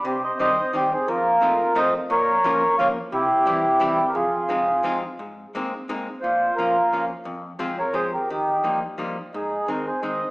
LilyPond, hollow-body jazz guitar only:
\new Staff \with { instrumentName = "Hollow-body jazz guitar" } { \time 3/4 \key f \minor \tempo 4 = 174 c4 <ees g c' ees' g'>8 r8 <ees g c' ees' g'>8 r8 | f,4 <f a c' ees' f'>8 r8 <f a c' ees' f'>8 r8 | bes,4 <f bes des' f' bes'>8 r8 <f bes des' f' bes'>8 r8 | c4 <e g c' e' g'>8 r8 <e g c' e' g'>8 r8 |
f,4 <f aes c' ees' f'>8 r8 <f aes c' ees' f'>8 r8 | \key aes \major aes,4 <aes bes c' ees'>8 r8 <aes bes c' ees'>8 r8 | bes,4 <f bes des' f'>8 r8 <f bes des' f'>8 r8 | f,4 <f aes c' f'>8 r8 <f aes c' f'>8 r8 |
ees4 <f g bes ees'>8 r8 <f g bes ees'>8 r8 | aes,4 <ees aes c' ees'>8 r8 <ees aes c' ees'>8 r8 | }